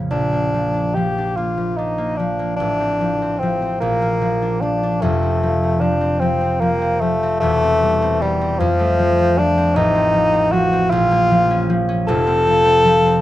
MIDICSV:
0, 0, Header, 1, 3, 480
1, 0, Start_track
1, 0, Tempo, 849858
1, 54, Time_signature, 6, 3, 24, 8
1, 533, Tempo, 816327
1, 2933, Tempo, 800000
1, 4373, Tempo, 779221
1, 7939, End_track
2, 0, Start_track
2, 0, Title_t, "Bassoon"
2, 0, Program_c, 0, 70
2, 62, Note_on_c, 0, 62, 90
2, 534, Note_on_c, 0, 67, 80
2, 543, Note_off_c, 0, 62, 0
2, 779, Note_on_c, 0, 65, 68
2, 788, Note_off_c, 0, 67, 0
2, 1017, Note_on_c, 0, 63, 71
2, 1025, Note_off_c, 0, 65, 0
2, 1251, Note_on_c, 0, 62, 79
2, 1260, Note_off_c, 0, 63, 0
2, 1481, Note_off_c, 0, 62, 0
2, 1484, Note_on_c, 0, 62, 95
2, 1969, Note_on_c, 0, 60, 71
2, 1978, Note_off_c, 0, 62, 0
2, 2210, Note_off_c, 0, 60, 0
2, 2213, Note_on_c, 0, 58, 88
2, 2690, Note_on_c, 0, 62, 85
2, 2699, Note_off_c, 0, 58, 0
2, 2929, Note_on_c, 0, 57, 88
2, 2938, Note_off_c, 0, 62, 0
2, 3402, Note_on_c, 0, 62, 86
2, 3411, Note_off_c, 0, 57, 0
2, 3635, Note_on_c, 0, 60, 84
2, 3644, Note_off_c, 0, 62, 0
2, 3882, Note_on_c, 0, 58, 84
2, 3891, Note_off_c, 0, 60, 0
2, 4123, Note_on_c, 0, 57, 95
2, 4132, Note_off_c, 0, 58, 0
2, 4354, Note_off_c, 0, 57, 0
2, 4358, Note_on_c, 0, 57, 114
2, 4856, Note_on_c, 0, 55, 88
2, 4865, Note_off_c, 0, 57, 0
2, 5092, Note_on_c, 0, 53, 108
2, 5101, Note_off_c, 0, 55, 0
2, 5578, Note_on_c, 0, 62, 98
2, 5587, Note_off_c, 0, 53, 0
2, 5808, Note_on_c, 0, 63, 108
2, 5817, Note_off_c, 0, 62, 0
2, 6280, Note_on_c, 0, 66, 110
2, 6290, Note_off_c, 0, 63, 0
2, 6516, Note_on_c, 0, 65, 110
2, 6525, Note_off_c, 0, 66, 0
2, 7083, Note_off_c, 0, 65, 0
2, 7235, Note_on_c, 0, 69, 127
2, 7939, Note_off_c, 0, 69, 0
2, 7939, End_track
3, 0, Start_track
3, 0, Title_t, "Harp"
3, 0, Program_c, 1, 46
3, 0, Note_on_c, 1, 41, 31
3, 0, Note_on_c, 1, 49, 32
3, 0, Note_on_c, 1, 53, 34
3, 0, Note_on_c, 1, 58, 32
3, 0, Note_on_c, 1, 61, 49
3, 0, Note_on_c, 1, 65, 53
3, 0, Note_on_c, 1, 70, 68
3, 60, Note_on_c, 1, 34, 53
3, 75, Note_off_c, 1, 49, 0
3, 76, Note_off_c, 1, 41, 0
3, 76, Note_off_c, 1, 61, 0
3, 176, Note_off_c, 1, 58, 0
3, 183, Note_on_c, 1, 58, 44
3, 299, Note_off_c, 1, 53, 0
3, 306, Note_on_c, 1, 53, 41
3, 417, Note_on_c, 1, 62, 43
3, 538, Note_off_c, 1, 53, 0
3, 545, Note_on_c, 1, 53, 43
3, 631, Note_off_c, 1, 70, 0
3, 653, Note_off_c, 1, 65, 0
3, 665, Note_off_c, 1, 62, 0
3, 673, Note_on_c, 1, 62, 44
3, 779, Note_off_c, 1, 58, 0
3, 786, Note_on_c, 1, 58, 46
3, 896, Note_off_c, 1, 53, 0
3, 903, Note_on_c, 1, 53, 42
3, 1020, Note_off_c, 1, 62, 0
3, 1027, Note_on_c, 1, 62, 46
3, 1135, Note_off_c, 1, 58, 0
3, 1142, Note_on_c, 1, 58, 46
3, 1261, Note_off_c, 1, 53, 0
3, 1268, Note_on_c, 1, 53, 45
3, 1377, Note_off_c, 1, 58, 0
3, 1385, Note_on_c, 1, 58, 47
3, 1507, Note_on_c, 1, 33, 56
3, 1512, Note_off_c, 1, 34, 0
3, 1516, Note_off_c, 1, 58, 0
3, 1516, Note_off_c, 1, 62, 0
3, 1626, Note_on_c, 1, 60, 46
3, 1741, Note_off_c, 1, 53, 0
3, 1748, Note_on_c, 1, 53, 44
3, 1863, Note_off_c, 1, 60, 0
3, 1870, Note_on_c, 1, 60, 45
3, 1986, Note_off_c, 1, 53, 0
3, 1993, Note_on_c, 1, 53, 46
3, 2100, Note_off_c, 1, 60, 0
3, 2107, Note_on_c, 1, 60, 47
3, 2222, Note_on_c, 1, 34, 56
3, 2238, Note_off_c, 1, 60, 0
3, 2239, Note_off_c, 1, 33, 0
3, 2342, Note_on_c, 1, 58, 49
3, 2449, Note_off_c, 1, 53, 0
3, 2456, Note_on_c, 1, 53, 47
3, 2578, Note_on_c, 1, 62, 49
3, 2690, Note_off_c, 1, 53, 0
3, 2697, Note_on_c, 1, 53, 44
3, 2813, Note_off_c, 1, 62, 0
3, 2820, Note_on_c, 1, 62, 54
3, 2929, Note_on_c, 1, 29, 61
3, 2934, Note_on_c, 1, 41, 65
3, 2956, Note_off_c, 1, 34, 0
3, 2956, Note_off_c, 1, 62, 0
3, 2957, Note_off_c, 1, 58, 0
3, 3054, Note_on_c, 1, 60, 48
3, 3170, Note_off_c, 1, 53, 0
3, 3177, Note_on_c, 1, 53, 48
3, 3288, Note_off_c, 1, 60, 0
3, 3296, Note_on_c, 1, 60, 48
3, 3397, Note_off_c, 1, 53, 0
3, 3404, Note_on_c, 1, 53, 51
3, 3516, Note_off_c, 1, 60, 0
3, 3523, Note_on_c, 1, 60, 53
3, 3641, Note_off_c, 1, 53, 0
3, 3648, Note_on_c, 1, 53, 55
3, 3756, Note_off_c, 1, 60, 0
3, 3763, Note_on_c, 1, 60, 53
3, 3880, Note_off_c, 1, 53, 0
3, 3888, Note_on_c, 1, 53, 51
3, 4001, Note_off_c, 1, 60, 0
3, 4008, Note_on_c, 1, 60, 53
3, 4121, Note_off_c, 1, 53, 0
3, 4128, Note_on_c, 1, 53, 52
3, 4248, Note_off_c, 1, 60, 0
3, 4255, Note_on_c, 1, 60, 57
3, 4366, Note_on_c, 1, 28, 60
3, 4375, Note_on_c, 1, 40, 67
3, 4389, Note_off_c, 1, 29, 0
3, 4389, Note_off_c, 1, 53, 0
3, 4392, Note_off_c, 1, 41, 0
3, 4494, Note_off_c, 1, 60, 0
3, 4502, Note_on_c, 1, 60, 55
3, 4621, Note_on_c, 1, 55, 54
3, 4733, Note_off_c, 1, 60, 0
3, 4740, Note_on_c, 1, 60, 57
3, 4854, Note_off_c, 1, 55, 0
3, 4862, Note_on_c, 1, 55, 61
3, 4974, Note_off_c, 1, 60, 0
3, 4981, Note_on_c, 1, 60, 56
3, 5099, Note_on_c, 1, 41, 73
3, 5112, Note_off_c, 1, 28, 0
3, 5117, Note_off_c, 1, 40, 0
3, 5119, Note_off_c, 1, 55, 0
3, 5216, Note_on_c, 1, 57, 58
3, 5336, Note_on_c, 1, 53, 57
3, 5449, Note_off_c, 1, 60, 0
3, 5456, Note_on_c, 1, 60, 62
3, 5574, Note_off_c, 1, 53, 0
3, 5582, Note_on_c, 1, 53, 57
3, 5691, Note_off_c, 1, 60, 0
3, 5698, Note_on_c, 1, 60, 67
3, 5811, Note_on_c, 1, 33, 75
3, 5837, Note_off_c, 1, 41, 0
3, 5921, Note_off_c, 1, 60, 0
3, 5929, Note_on_c, 1, 60, 59
3, 6037, Note_off_c, 1, 53, 0
3, 6044, Note_on_c, 1, 53, 58
3, 6158, Note_off_c, 1, 60, 0
3, 6166, Note_on_c, 1, 60, 62
3, 6279, Note_off_c, 1, 53, 0
3, 6286, Note_on_c, 1, 53, 59
3, 6401, Note_off_c, 1, 60, 0
3, 6408, Note_on_c, 1, 60, 66
3, 6527, Note_on_c, 1, 34, 82
3, 6543, Note_off_c, 1, 33, 0
3, 6545, Note_off_c, 1, 57, 0
3, 6546, Note_off_c, 1, 60, 0
3, 6645, Note_on_c, 1, 58, 65
3, 6760, Note_off_c, 1, 53, 0
3, 6767, Note_on_c, 1, 53, 64
3, 6885, Note_on_c, 1, 61, 65
3, 6997, Note_off_c, 1, 53, 0
3, 7004, Note_on_c, 1, 53, 61
3, 7114, Note_off_c, 1, 61, 0
3, 7121, Note_on_c, 1, 61, 71
3, 7241, Note_on_c, 1, 29, 75
3, 7244, Note_on_c, 1, 41, 76
3, 7261, Note_off_c, 1, 61, 0
3, 7263, Note_off_c, 1, 58, 0
3, 7264, Note_off_c, 1, 34, 0
3, 7356, Note_on_c, 1, 60, 66
3, 7472, Note_off_c, 1, 53, 0
3, 7479, Note_on_c, 1, 53, 60
3, 7586, Note_off_c, 1, 60, 0
3, 7593, Note_on_c, 1, 60, 58
3, 7707, Note_off_c, 1, 53, 0
3, 7715, Note_on_c, 1, 53, 62
3, 7837, Note_off_c, 1, 60, 0
3, 7844, Note_on_c, 1, 60, 65
3, 7939, Note_off_c, 1, 29, 0
3, 7939, Note_off_c, 1, 41, 0
3, 7939, Note_off_c, 1, 53, 0
3, 7939, Note_off_c, 1, 60, 0
3, 7939, End_track
0, 0, End_of_file